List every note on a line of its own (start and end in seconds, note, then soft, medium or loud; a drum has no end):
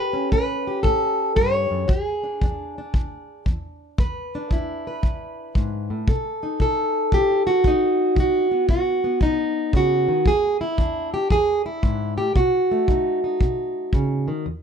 0.00 0.29 A2 medium
0.00 0.33 G4 medium
0.00 0.31 B4 loud
0.13 1.87 C#4 soft
0.32 0.81 A2 medium
0.32 0.83 B4 medium
0.32 kick medium
0.67 1.87 G4 soft
0.83 1.33 A2 medium
0.83 1.36 A4 loud
0.83 kick medium
1.36 1.70 G2 medium
1.36 1.89 C#5 medium
1.36 kick medium
1.71 1.89 F#2 medium
1.88 2.38 E2 medium
1.88 3.46 G#4 medium
1.88 kick medium
2.23 2.43 D4 soft
2.42 2.91 E2 medium
2.42 2.78 D4 soft
2.42 kick medium
2.78 3.98 D4 soft
2.94 3.43 E2 medium
2.94 kick medium
3.46 3.95 E2 medium
3.46 kick medium
3.98 4.48 E2 medium
3.98 4.87 B4 medium
3.98 kick medium
4.35 6.07 D4 medium
4.51 5.00 E2 medium
4.51 6.07 E4 medium
4.51 kick medium
4.87 6.08 B4 medium
5.03 5.52 E2 medium
5.03 kick medium
5.55 5.90 G#2 medium
5.55 kick medium
5.90 6.08 A2 medium
6.08 6.57 B2 medium
6.08 6.61 A4 soft
6.08 kick medium
6.43 7.65 D#4 soft
6.60 7.09 B2 medium
6.60 7.66 A4 medium
6.60 kick medium
7.12 7.61 B2 medium
7.12 7.46 G4 loud
7.12 kick medium
7.47 8.17 F#4 medium
7.64 8.13 B2 medium
7.64 8.51 D#4 medium
7.64 kick medium
8.15 8.65 B2 medium
8.15 kick medium
8.20 8.69 F#4 loud
8.51 9.04 B3 soft
8.69 9.18 B2 medium
8.69 9.22 F#4 medium
8.69 kick medium
9.04 12.20 B3 soft
9.20 9.70 B2 medium
9.20 9.75 D#4 loud
9.20 kick medium
9.73 10.08 C#3 medium
9.73 10.28 F#4 loud
9.73 kick medium
10.08 10.26 D#3 medium
10.26 10.75 E2 medium
10.26 10.61 G#4 loud
10.26 kick medium
10.61 11.13 E4 medium
10.78 11.27 E2 medium
10.78 12.34 D4 soft
10.78 kick medium
11.14 11.31 G4 medium
11.30 11.80 E2 medium
11.30 11.65 G#4 loud
11.30 kick medium
11.66 12.17 E4 medium
11.83 12.17 G#2 medium
11.83 kick medium
12.17 12.36 A2 medium
12.17 12.36 G4 medium
12.36 12.85 B2 medium
12.36 14.46 F#4 medium
12.36 kick medium
12.71 14.44 A3 soft
12.88 13.37 B2 medium
12.88 13.23 D#4 soft
12.88 kick medium
13.24 14.44 D#4 soft
13.41 13.89 B2 medium
13.41 kick medium
13.93 14.27 C#3 medium
13.93 kick medium
14.28 14.46 D#3 medium
14.46 14.63 E2 medium